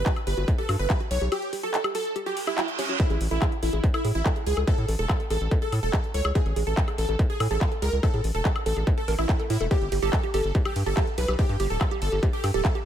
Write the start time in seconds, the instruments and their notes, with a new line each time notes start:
Already playing: supersaw synth B4
0.06 synth arpeggio sound F#4, kick, clap, closed hi-hat
0.16 closed hi-hat, high woodblock
0.27 analog synth bass G1, synth arpeggio sound G4, supersaw synth B4, open hi-hat
0.37 analog synth bass G1, synth arpeggio sound F#4
0.48 kick, closed hi-hat
0.58 synth arpeggio sound G4, supersaw synth A4, closed hi-hat
0.69 analog synth bass G2, synth arpeggio sound F#4, open hi-hat, high woodblock
0.79 analog synth bass G1, supersaw synth B4, closed hi-hat
0.90 synth arpeggio sound G4, kick, clap, closed hi-hat
1.00 synth arpeggio sound F#4, closed hi-hat
1.11 analog synth bass B1, supersaw synth C#5, open hi-hat
1.21 analog synth bass B1, synth arpeggio sound G4, closed hi-hat
1.32 synth arpeggio sound F#4, supersaw synth G4, closed hi-hat, high woodblock
1.42 closed hi-hat
1.53 synth arpeggio sound G4, open hi-hat
1.63 synth arpeggio sound F#4, supersaw synth A4, closed hi-hat
1.74 clap, closed hi-hat
1.84 synth arpeggio sound G4, closed hi-hat, high woodblock
1.95 synth arpeggio sound F#4, supersaw synth A4, open hi-hat
2.05 closed hi-hat
2.16 synth arpeggio sound G4, closed hi-hat, reverse cymbal
2.26 synth arpeggio sound F#4, supersaw synth G4, closed hi-hat
2.37 open hi-hat
2.47 supersaw synth E4, synth arpeggio sound G4, closed hi-hat, high woodblock
2.58 synth arpeggio sound F#4, clap, closed hi-hat
2.68 closed hi-hat
2.79 supersaw synth C#4, synth arpeggio sound G4, open hi-hat
2.89 synth arpeggio sound F#4, closed hi-hat
3.00 supersaw synth E4, synth arpeggio sound A4, kick, closed hi-hat
3.10 analog synth bass A1, synth arpeggio sound G#4, closed hi-hat
3.21 analog synth bass A1, open hi-hat
3.31 analog synth bass A1, supersaw synth E4, synth arpeggio sound A4, closed hi-hat
3.42 synth arpeggio sound G#4, kick, clap, closed hi-hat, high woodblock
3.52 closed hi-hat
3.63 analog synth bass A1, supersaw synth E4, synth arpeggio sound A4, open hi-hat
3.73 analog synth bass A1, synth arpeggio sound G#4, closed hi-hat
3.84 kick, closed hi-hat
3.94 supersaw synth E4, synth arpeggio sound A4, closed hi-hat, high woodblock
4.05 analog synth bass A2, synth arpeggio sound G#4, open hi-hat
4.15 analog synth bass A1, supersaw synth E4, closed hi-hat
4.26 synth arpeggio sound A4, kick, clap, closed hi-hat
4.36 synth arpeggio sound G#4, closed hi-hat
4.47 analog synth bass C#2, supersaw synth G#4, open hi-hat
4.57 analog synth bass C#2, synth arpeggio sound A4, closed hi-hat, high woodblock
4.67 synth arpeggio sound G#4, supersaw synth A4, kick, closed hi-hat
4.78 analog synth bass A2, closed hi-hat
4.88 analog synth bass A1, synth arpeggio sound A4, open hi-hat
4.99 analog synth bass E1, synth arpeggio sound G#4, supersaw synth A4, closed hi-hat
5.09 kick, clap, closed hi-hat, high woodblock
5.20 synth arpeggio sound A4, closed hi-hat
5.30 analog synth bass A1, synth arpeggio sound G#4, supersaw synth A4, open hi-hat
5.41 analog synth bass A1, closed hi-hat
5.51 synth arpeggio sound A4, kick, closed hi-hat
5.62 synth arpeggio sound G#4, supersaw synth A4, closed hi-hat
5.72 analog synth bass A2, open hi-hat, high woodblock
5.83 analog synth bass E1, synth arpeggio sound A4, supersaw synth A4, closed hi-hat
5.93 synth arpeggio sound G#4, kick, clap, closed hi-hat
6.04 closed hi-hat
6.14 analog synth bass C#2, synth arpeggio sound A4, supersaw synth C#5, open hi-hat
6.25 analog synth bass C#2, synth arpeggio sound G#4, high woodblock
6.35 supersaw synth G#4, kick, closed hi-hat
6.46 analog synth bass A1, synth arpeggio sound A4, closed hi-hat
6.56 analog synth bass A1, synth arpeggio sound G#4, open hi-hat
6.67 analog synth bass A1, supersaw synth A4
6.77 synth arpeggio sound A4, kick, clap, closed hi-hat
6.88 synth arpeggio sound G#4, closed hi-hat, high woodblock
6.98 analog synth bass A1, supersaw synth A4, open hi-hat
7.09 analog synth bass A1, synth arpeggio sound A4, closed hi-hat
7.19 synth arpeggio sound G#4, kick, closed hi-hat
7.30 supersaw synth G#4, closed hi-hat
7.40 analog synth bass A2, synth arpeggio sound A4, open hi-hat, high woodblock
7.51 analog synth bass A1, synth arpeggio sound G#4, supersaw synth A4
7.61 kick, clap, closed hi-hat
7.72 synth arpeggio sound A4, closed hi-hat
7.82 analog synth bass C#2, synth arpeggio sound G#4, supersaw synth A#4, open hi-hat
7.93 analog synth bass C#2, closed hi-hat
8.03 supersaw synth A4, synth arpeggio sound A4, kick, closed hi-hat, high woodblock
8.14 analog synth bass A2, synth arpeggio sound G#4, closed hi-hat
8.24 analog synth bass A1, open hi-hat
8.35 analog synth bass E1, synth arpeggio sound A4, supersaw synth A4, closed hi-hat
8.45 synth arpeggio sound G#4, kick, clap, closed hi-hat
8.56 closed hi-hat, high woodblock
8.66 analog synth bass A1, supersaw synth A4, synth arpeggio sound A4, open hi-hat
8.77 analog synth bass A1, synth arpeggio sound G#4, closed hi-hat
8.87 kick, closed hi-hat
8.98 supersaw synth A4, synth arpeggio sound A4, closed hi-hat
9.08 analog synth bass A1, synth arpeggio sound A#4, open hi-hat
9.18 analog synth bass A1, supersaw synth E4, closed hi-hat, high woodblock
9.29 synth arpeggio sound A4, kick, clap, closed hi-hat
9.40 synth arpeggio sound A4, closed hi-hat
9.50 analog synth bass A2, supersaw synth E4, open hi-hat
9.61 analog synth bass E1, synth arpeggio sound A4, closed hi-hat
9.71 supersaw synth G4, synth arpeggio sound G4, kick, closed hi-hat
9.81 analog synth bass G1, closed hi-hat
9.92 analog synth bass G1, synth arpeggio sound G4, open hi-hat, ride
10.02 analog synth bass G1, synth arpeggio sound G4, supersaw synth A4, closed hi-hat
10.13 kick, clap, closed hi-hat, high woodblock
10.23 synth arpeggio sound G4, closed hi-hat
10.34 analog synth bass G1, synth arpeggio sound G4, supersaw synth A4, open hi-hat, ride
10.44 analog synth bass G1, closed hi-hat
10.55 synth arpeggio sound G4, kick, closed hi-hat
10.65 supersaw synth G4, synth arpeggio sound G4, closed hi-hat, high woodblock
10.76 analog synth bass G2, open hi-hat, ride
10.86 analog synth bass G1, synth arpeggio sound G4, supersaw synth A4, closed hi-hat
10.97 synth arpeggio sound G4, kick, clap, closed hi-hat
11.07 closed hi-hat
11.18 analog synth bass B1, synth arpeggio sound G4, supersaw synth B4, open hi-hat, ride
11.28 analog synth bass B1, synth arpeggio sound G4, closed hi-hat, high woodblock
11.39 supersaw synth G4, kick, closed hi-hat
11.49 analog synth bass G2, synth arpeggio sound G4, closed hi-hat
11.60 analog synth bass G1, synth arpeggio sound G4, open hi-hat, ride
11.70 analog synth bass D1, supersaw synth A4, closed hi-hat
11.81 synth arpeggio sound G4, kick, clap, closed hi-hat, high woodblock
11.91 synth arpeggio sound G4, closed hi-hat
12.02 analog synth bass G1, supersaw synth A4, open hi-hat, ride
12.12 analog synth bass G1, synth arpeggio sound G4, closed hi-hat
12.23 synth arpeggio sound G4, kick, closed hi-hat
12.33 supersaw synth G4, closed hi-hat
12.44 analog synth bass G2, synth arpeggio sound G4, open hi-hat, ride, high woodblock
12.54 analog synth bass D1, synth arpeggio sound G4, supersaw synth A4, closed hi-hat
12.65 kick, clap, closed hi-hat
12.75 synth arpeggio sound G4, closed hi-hat